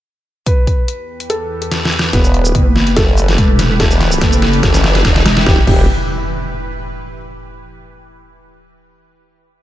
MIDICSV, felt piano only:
0, 0, Header, 1, 2, 480
1, 0, Start_track
1, 0, Key_signature, 1, "minor"
1, 0, Tempo, 416667
1, 537, Time_signature, 4, 2, 24, 8
1, 11087, End_track
2, 0, Start_track
2, 0, Title_t, "Felt piano"
2, 0, Program_c, 0, 0
2, 536, Note_on_c, 0, 71, 90
2, 1406, Note_off_c, 0, 71, 0
2, 1495, Note_on_c, 0, 69, 89
2, 2366, Note_off_c, 0, 69, 0
2, 2456, Note_on_c, 0, 59, 73
2, 2457, Note_on_c, 0, 71, 96
2, 3326, Note_off_c, 0, 59, 0
2, 3326, Note_off_c, 0, 71, 0
2, 3415, Note_on_c, 0, 69, 89
2, 3416, Note_on_c, 0, 57, 77
2, 4286, Note_off_c, 0, 57, 0
2, 4286, Note_off_c, 0, 69, 0
2, 4374, Note_on_c, 0, 57, 75
2, 4374, Note_on_c, 0, 69, 94
2, 6205, Note_off_c, 0, 57, 0
2, 6205, Note_off_c, 0, 69, 0
2, 6295, Note_on_c, 0, 67, 91
2, 6435, Note_off_c, 0, 67, 0
2, 6535, Note_on_c, 0, 67, 93
2, 6717, Note_off_c, 0, 67, 0
2, 11087, End_track
0, 0, End_of_file